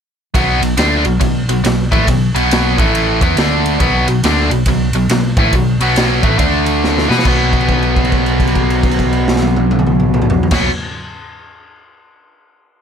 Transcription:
0.34 0.60 B1 medium
0.34 0.60 B2 medium
0.34 0.61 F#3 medium
0.34 0.62 B3 loud
0.34 kick loud
0.34 ride medium
0.61 0.76 B1 medium
0.61 0.74 B2 medium
0.61 0.74 F#3 medium
0.61 ride medium
0.77 1.03 D2 medium
0.77 1.04 D3 medium
0.77 1.04 A3 medium
0.77 1.05 D4 medium
0.77 snare loud
0.77 ride loud
1.05 1.20 B1 medium
1.05 1.18 B2 medium
1.05 1.18 F#3 medium
1.05 ride medium
1.20 1.46 B1 medium
1.20 1.42 B2 medium
1.20 1.43 F#3 medium
1.20 kick medium
1.20 ride loud
1.48 1.63 B1 medium
1.48 1.61 B2 medium
1.48 1.61 F#3 medium
1.48 ride medium
1.64 1.89 B1 medium
1.64 1.86 B2 medium
1.64 1.86 F#3 medium
1.64 snare loud
1.64 ride loud
1.91 2.06 A1 medium
1.91 2.07 A2 loud
1.91 2.07 E3 loud
1.91 2.07 A3 loud
1.91 kick loud
1.91 ride medium
2.07 2.33 B1 medium
2.07 2.29 B2 medium
2.07 2.29 F#3 medium
2.07 kick medium
2.07 ride loud
2.35 2.75 B1 medium
2.35 2.77 B2 medium
2.35 2.77 F#3 medium
2.35 2.77 B3 medium
2.35 ride medium
2.51 snare loud
2.51 ride medium
2.78 3.18 A1 loud
2.78 3.20 A2 medium
2.78 3.21 E3 loud
2.78 3.21 A3 loud
2.78 kick loud
2.78 ride medium
2.95 ride medium
3.21 3.35 E2 medium
3.21 3.36 E3 medium
3.21 3.37 B3 loud
3.21 3.37 E4 loud
3.21 kick loud
3.21 ride medium
3.36 3.76 D2 loud
3.36 3.79 D3 loud
3.36 3.80 A3 loud
3.36 3.81 D4 loud
3.36 snare loud
3.36 ride medium
3.66 ride medium
3.80 4.05 B1 loud
3.80 4.06 B2 medium
3.80 4.07 F#3 loud
3.80 4.07 B3 medium
3.80 kick loud
3.80 ride medium
4.08 4.22 B1 medium
4.08 4.20 B2 medium
4.08 4.20 F#3 medium
4.08 ride medium
4.23 4.49 D2 loud
4.23 4.50 D3 loud
4.23 4.51 A3 loud
4.23 4.51 D4 medium
4.23 snare loud
4.23 ride loud
4.50 4.65 B1 medium
4.50 4.63 B2 medium
4.50 4.63 F#3 medium
4.50 ride medium
4.66 4.92 B1 medium
4.66 4.89 B2 medium
4.66 4.89 F#3 medium
4.66 kick medium
4.66 ride loud
4.93 5.08 B1 medium
4.93 5.07 B2 medium
4.93 5.07 F#3 medium
4.93 ride medium
5.09 5.34 B1 medium
5.09 5.32 B2 medium
5.09 5.32 F#3 medium
5.09 snare loud
5.09 ride loud
5.37 5.51 A1 medium
5.37 5.53 A2 loud
5.37 5.53 E3 loud
5.37 5.53 A3 loud
5.37 kick loud
5.37 ride medium
5.53 5.78 B1 medium
5.53 5.76 B2 medium
5.53 5.76 F#3 medium
5.53 kick medium
5.53 ride medium
5.79 6.20 B1 medium
5.79 6.22 B2 medium
5.79 6.23 F#3 medium
5.79 6.23 B3 medium
5.79 ride medium
5.96 snare loud
5.96 ride medium
6.23 6.38 A1 loud
6.23 6.37 A2 medium
6.23 6.38 E3 medium
6.23 6.37 A3 medium
6.23 kick medium
6.23 ride medium
6.38 7.06 D2 medium
6.38 7.08 D3 medium
6.38 7.08 A3 loud
6.38 7.09 D4 loud
6.38 kick loud
6.38 ride medium
6.66 ride medium
6.84 snare medium
6.98 snare medium
7.08 7.24 B2 medium
7.08 7.24 B3 loud
7.08 7.25 F#4 medium
7.08 7.25 B4 loud
7.08 snare medium
7.19 snare medium
7.25 10.41 B1 loud
7.25 10.51 B2 loud
7.25 10.53 F#3 medium
7.25 10.54 B3 medium
7.25 kick medium
7.25 crash medium
7.53 kick medium
7.53 crash soft
7.61 crash soft
7.68 kick medium
7.68 crash soft
7.82 crash soft
7.96 kick medium
7.96 crash soft
8.04 crash soft
8.12 kick medium
8.12 crash soft
8.26 crash soft
8.40 kick medium
8.40 crash soft
8.47 crash soft
8.55 kick medium
8.55 crash soft
8.70 crash medium
8.83 kick medium
8.83 crash medium
8.91 crash medium
8.99 kick medium
8.99 crash soft
9.13 crash soft
9.28 snare medium
9.36 snare medium
9.42 high tom medium
9.56 high tom medium
9.71 high tom medium
9.79 mid tom loud
9.87 mid tom loud
10.00 mid tom medium
10.14 mid tom loud
10.22 mid tom loud
10.30 floor tom loud
10.43 floor tom loud
10.51 10.66 B1 medium
10.51 10.68 B2 medium
10.51 10.69 F#3 loud
10.51 10.69 B3 medium
10.51 kick loud
10.51 snare medium
10.51 crash loud

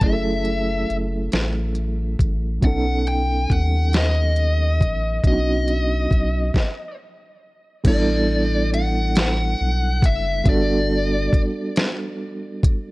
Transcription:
0.00 0.85 F#1 medium
0.00 2.58 F#3 medium
0.00 2.59 A3 medium
0.00 2.60 C#4 medium
0.00 0.97 E5 medium
0.00 kick loud
0.00 closed hi-hat medium
0.05 2.60 E4 medium
0.05 0.11 G#4 medium
0.13 2.64 A4 medium
0.45 closed hi-hat soft
0.90 1.29 F#1 medium
0.90 closed hi-hat soft
1.32 2.16 A1 medium
1.32 snare loud
1.32 closed hi-hat medium
1.75 closed hi-hat soft
2.19 2.60 A1 medium
2.19 kick medium
2.19 closed hi-hat medium
2.61 3.46 B1 medium
2.61 5.19 F#3 medium
2.61 5.20 B3 medium
2.61 5.20 C#4 medium
2.61 3.07 F#5 loud
2.61 kick loud
2.61 closed hi-hat medium
2.66 5.21 D#4 medium
2.66 5.22 A4 medium
3.07 3.52 G5 medium
3.07 closed hi-hat soft
3.50 4.83 D#2 medium
3.50 3.96 F#5 medium
3.50 kick medium
3.50 closed hi-hat soft
3.93 5.26 D#5 medium
3.93 snare loud
3.93 closed hi-hat medium
4.36 closed hi-hat soft
4.81 5.20 A1 medium
4.81 kick medium
4.81 closed hi-hat medium
5.24 6.07 B1 loud
5.24 6.54 F#3 medium
5.24 6.55 B3 medium
5.24 6.55 C#4 medium
5.24 5.31 D4 soft
5.24 6.56 F#4 medium
5.24 6.95 D#5 medium
5.24 kick loud
5.24 closed hi-hat medium
5.32 6.59 D#4 medium
5.68 closed hi-hat medium
6.11 6.51 B1 medium
6.11 kick medium
6.11 closed hi-hat soft
6.54 kick medium
6.54 snare medium
7.84 9.55 A1 loud
7.84 10.41 G3 medium
7.84 10.42 B3 medium
7.84 10.43 D4 medium
7.84 8.69 D5 medium
7.84 kick loud
7.84 closed hi-hat medium
7.84 crash loud
7.88 10.43 E4 medium
7.88 10.44 A4 medium
8.74 10.07 F#5 loud
8.74 closed hi-hat medium
9.15 snare loud
9.15 closed hi-hat medium
9.61 10.05 B1 medium
10.03 10.42 F#1 medium
10.03 10.48 E5 medium
10.03 kick loud
10.03 closed hi-hat medium
10.44 11.29 G1 loud
10.44 12.91 G3 medium
10.44 12.91 B3 medium
10.44 12.91 D4 medium
10.44 kick loud
10.44 closed hi-hat medium
10.48 12.91 F#4 medium
10.48 12.91 A4 medium
10.48 11.41 D5 medium
11.33 11.42 G1 soft
11.33 kick medium
11.33 closed hi-hat medium
11.76 snare loud
11.76 closed hi-hat medium
12.63 kick loud
12.63 closed hi-hat medium

